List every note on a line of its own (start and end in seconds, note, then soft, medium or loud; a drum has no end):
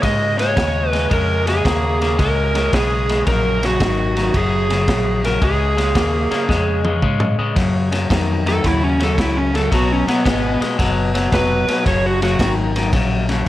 0.02 0.55 G#2 medium
0.02 0.35 C#3 medium
0.02 0.35 G#3 medium
0.02 0.38 D#5 loud
0.02 kick medium
0.02 snare soft
0.02 ride medium
0.38 0.54 C#3 medium
0.38 0.55 G#3 medium
0.38 0.89 C#5 medium
0.38 snare soft
0.38 ride medium
0.56 1.09 D#2 medium
0.56 0.89 C#3 medium
0.56 0.89 G#3 medium
0.56 kick medium
0.56 snare loud
0.56 ride medium
0.89 1.08 C#3 medium
0.89 1.09 G#3 medium
0.89 1.07 B4 medium
0.89 ride medium
0.94 snare soft
1.10 1.63 F2 medium
1.10 1.43 C#3 medium
1.10 1.43 G#3 medium
1.10 1.49 A#4 medium
1.10 kick medium
1.10 ride medium
1.47 1.63 C#3 medium
1.47 1.63 G#3 medium
1.47 2.22 G#4 medium
1.47 snare soft
1.47 ride medium
1.65 2.17 D#2 medium
1.65 1.97 C#3 medium
1.65 1.98 A#3 medium
1.65 kick medium
1.65 snare loud
1.65 ride medium
2.01 2.17 C#3 medium
2.01 2.17 A#3 medium
2.01 snare soft
2.01 ride medium
2.18 2.71 C#2 medium
2.18 2.51 C#3 medium
2.18 2.51 G#3 medium
2.18 2.75 A#4 medium
2.18 kick medium
2.18 snare soft
2.18 ride medium
2.55 2.71 C#3 medium
2.55 2.71 G#3 medium
2.55 snare soft
2.55 ride medium
2.73 3.25 B1 medium
2.73 3.05 C#3 medium
2.73 3.06 G#3 medium
2.73 3.27 G#4 medium
2.73 kick medium
2.73 snare loud
2.73 ride medium
3.09 3.25 C#3 medium
3.09 3.26 G#3 medium
3.09 snare soft
3.09 ride medium
3.26 3.79 A#1 medium
3.26 3.60 F#2 medium
3.26 3.60 C#3 medium
3.26 3.64 A#4 medium
3.26 kick medium
3.26 snare soft
3.26 ride medium
3.63 3.79 F#2 medium
3.63 3.79 C#3 medium
3.63 4.38 F#4 medium
3.63 snare soft
3.63 ride medium
3.80 4.33 G#1 medium
3.80 4.13 F#2 medium
3.80 4.13 D#3 medium
3.80 kick medium
3.80 snare loud
3.80 ride medium
4.16 4.32 F#2 medium
4.16 4.33 D#3 medium
4.16 snare soft
4.16 ride medium
4.34 4.86 F#1 medium
4.34 4.66 F#2 medium
4.34 4.67 C#3 medium
4.34 5.21 G#4 medium
4.34 kick medium
4.34 ride medium
4.70 4.86 F#2 medium
4.70 4.87 C#3 medium
4.70 snare soft
4.70 ride medium
4.88 5.40 A#1 medium
4.88 5.20 F#2 medium
4.88 5.21 C#3 medium
4.88 kick medium
4.88 snare loud
4.88 ride medium
5.24 5.40 F#2 medium
5.24 5.41 C#3 medium
5.24 5.41 A#4 medium
5.24 snare soft
5.24 ride medium
5.42 5.94 C#2 medium
5.42 5.74 C#3 medium
5.42 5.74 G#3 medium
5.42 7.00 G#4 medium
5.42 kick medium
5.42 ride medium
5.77 5.94 C#3 medium
5.77 5.94 G#3 medium
5.77 snare soft
5.77 ride medium
5.95 6.29 D#2 medium
5.95 6.28 C#3 medium
5.95 6.28 A#3 medium
5.95 kick medium
5.95 snare loud
5.95 ride medium
6.31 6.47 C#3 medium
6.31 6.47 A#3 medium
6.31 muted fingered electric bass stroke soft
6.31 snare soft
6.31 ride medium
6.49 7.01 F2 medium
6.49 6.81 C#3 medium
6.49 6.82 G#3 medium
6.49 kick medium
6.49 snare medium
6.85 7.01 C#3 medium
6.85 7.01 G#3 medium
6.85 high tom medium
7.02 7.36 G#2 medium
7.02 7.35 C#3 medium
7.02 7.36 G#3 medium
7.02 kick medium
7.02 mid tom medium
7.20 mid tom loud
7.39 7.55 C#3 medium
7.39 7.55 G#3 medium
7.39 muted fingered electric bass stroke soft
7.56 7.89 F#2 medium
7.56 8.09 F#2 medium
7.56 7.89 C#3 medium
7.56 kick medium
7.56 snare soft
7.56 ride medium
7.92 8.08 F#2 medium
7.92 8.08 C#3 medium
7.92 snare soft
7.92 ride medium
8.10 8.62 F2 medium
8.10 8.43 F#2 medium
8.10 8.43 D#3 medium
8.10 kick medium
8.10 snare loud
8.10 ride medium
8.46 8.62 F#2 medium
8.46 8.62 D#3 medium
8.46 8.65 A4 medium
8.46 snare soft
8.46 ride medium
8.63 9.16 D#2 medium
8.63 8.96 F#2 medium
8.63 8.96 C#3 medium
8.63 8.82 E4 medium
8.63 kick medium
8.63 snare soft
8.63 ride medium
8.83 9.00 C#4 medium
9.00 9.16 F#2 medium
9.00 9.16 C#3 medium
9.00 9.19 A4 medium
9.00 snare soft
9.00 ride medium
9.18 9.70 C#2 medium
9.18 9.50 F#2 medium
9.18 9.50 C#3 medium
9.18 9.36 E4 medium
9.18 kick medium
9.18 snare medium
9.18 ride medium
9.37 9.54 C#4 medium
9.54 9.70 F#2 medium
9.54 9.70 C#3 medium
9.54 9.72 A4 medium
9.54 snare soft
9.54 ride soft
9.71 10.05 B1 medium
9.71 10.04 B2 medium
9.71 10.04 F#3 medium
9.71 9.90 F#4 medium
9.71 kick medium
9.71 snare soft
9.71 ride medium
9.92 10.08 C#4 medium
10.08 10.23 B2 medium
10.08 10.24 F#3 medium
10.08 10.60 B3 medium
10.08 snare soft
10.08 ride medium
10.25 10.59 G#1 medium
10.25 10.57 B2 medium
10.25 10.58 G#3 medium
10.25 kick medium
10.25 snare loud
10.25 ride medium
10.61 10.77 B2 medium
10.61 10.77 G#3 medium
10.61 snare soft
10.61 ride medium
10.78 11.31 F#1 medium
10.78 11.11 B2 medium
10.78 11.11 F#3 medium
10.78 kick medium
10.78 snare soft
10.78 ride medium
11.14 11.30 B2 medium
11.14 11.30 F#3 medium
11.14 snare soft
11.14 ride medium
11.32 11.66 F1 medium
11.32 11.65 B2 medium
11.32 11.65 F#3 medium
11.32 11.85 B4 loud
11.32 kick medium
11.32 snare loud
11.32 ride medium
11.68 11.84 B2 medium
11.68 11.84 F#3 medium
11.68 muted fingered electric bass stroke soft
11.68 snare soft
11.68 ride medium
11.86 12.38 F#1 medium
11.86 12.18 F#2 medium
11.86 12.19 C#3 medium
11.86 12.04 C#5 medium
11.86 kick medium
11.86 snare soft
11.86 ride medium
12.06 12.22 F#4 medium
12.22 12.38 F#2 medium
12.22 12.38 C#3 medium
12.22 12.51 F#4 loud
12.22 snare soft
12.22 ride medium
12.39 12.92 G#1 medium
12.39 12.72 F#2 medium
12.39 12.72 D#3 medium
12.39 kick medium
12.39 snare loud
12.39 ride medium
12.76 12.92 F#2 medium
12.76 12.92 D#3 medium
12.76 snare soft
12.76 ride medium
12.93 13.45 A#1 medium
12.93 13.25 F#2 medium
12.93 13.26 C#3 medium
12.93 kick medium
12.93 snare soft
12.93 ride medium
13.29 13.45 F#2 medium
13.29 13.45 C#3 medium
13.29 snare soft
13.29 ride medium